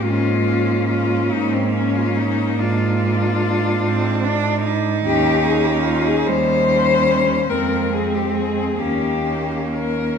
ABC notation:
X:1
M:12/8
L:1/16
Q:3/8=48
K:Bbdor
V:1 name="Cello"
F4 F2 E C D F E2 F8- F2 z2 | G2 A G F A c6 B2 A G A2 G4 B2 |]
V:2 name="Cello"
D2 D6 D4 =D2 D6 D4 | D2 D6 D4 C2 C4 D2 D4 |]
V:3 name="Cello"
B,16- B,2 C2 =D2 E2- | E6 G,6 A,6 B,6 |]
V:4 name="Cello" clef=bass
A,,6 A,,6 A,,6 A,,6 | E,,6 E,,6 F,,6 E,,6 |]